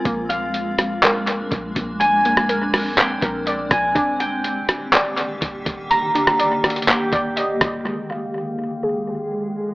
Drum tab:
HH |x---x---x---x---x---x---x---x---|x---x---x---o---x---x---x---x---|x---x---x---x---x---x---x---x---|x---x---x---xxxxx---x---x---x---|
CP |----------------x---------------|----------------x---------------|----------------x---------------|----------------x---------------|
SD |------------r-------------------|------r-----r---------------r---|------------r-------------------|------r-----r---------------r---|
BD |o-----------------------o---o---|--------------------o-------o---|o-----------------------o---o---|--------------------o-------o---|

HH |--------------------------------|
CP |--------------------------------|
SD |--------------------------------|
BD |--------------------------------|